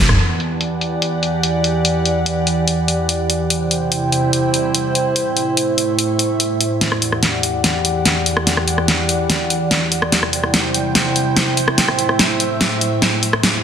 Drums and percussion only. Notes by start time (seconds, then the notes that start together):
0.09 cross-stick, mid tom
0.19 closed hi-hat
0.40 closed hi-hat
0.61 closed hi-hat
0.81 closed hi-hat
1.02 closed hi-hat
1.23 closed hi-hat
1.43 closed hi-hat
1.64 closed hi-hat
1.85 closed hi-hat
2.06 closed hi-hat
2.26 closed hi-hat
2.47 closed hi-hat
2.68 closed hi-hat
2.88 closed hi-hat
3.09 closed hi-hat
3.30 closed hi-hat
3.50 closed hi-hat
3.71 closed hi-hat
3.92 closed hi-hat
4.12 closed hi-hat
4.33 closed hi-hat
4.54 closed hi-hat
4.75 closed hi-hat
4.95 closed hi-hat
5.16 closed hi-hat
5.37 closed hi-hat
5.57 closed hi-hat
5.78 closed hi-hat
5.99 closed hi-hat
6.19 closed hi-hat
6.40 closed hi-hat
6.61 closed hi-hat
6.81 snare, closed hi-hat
6.92 cross-stick
7.02 closed hi-hat
7.12 cross-stick
7.23 snare, closed hi-hat
7.43 closed hi-hat
7.64 snare, closed hi-hat
7.85 closed hi-hat
8.05 snare, closed hi-hat
8.26 closed hi-hat
8.37 cross-stick
8.47 snare, closed hi-hat
8.57 cross-stick
8.68 closed hi-hat
8.78 cross-stick
8.88 snare, closed hi-hat
9.09 closed hi-hat
9.30 snare, closed hi-hat
9.50 closed hi-hat
9.71 snare, closed hi-hat
9.92 closed hi-hat
10.02 cross-stick
10.12 snare, closed hi-hat
10.23 cross-stick
10.33 closed hi-hat
10.44 cross-stick
10.54 snare, closed hi-hat
10.74 closed hi-hat
10.95 snare, closed hi-hat
11.16 closed hi-hat
11.37 snare, closed hi-hat
11.57 closed hi-hat
11.68 cross-stick
11.78 snare, closed hi-hat
11.88 cross-stick
11.99 closed hi-hat
12.09 cross-stick
12.19 snare, closed hi-hat
12.40 closed hi-hat
12.61 snare, closed hi-hat
12.81 closed hi-hat
13.02 snare, closed hi-hat
13.23 closed hi-hat
13.33 cross-stick
13.43 snare, closed hi-hat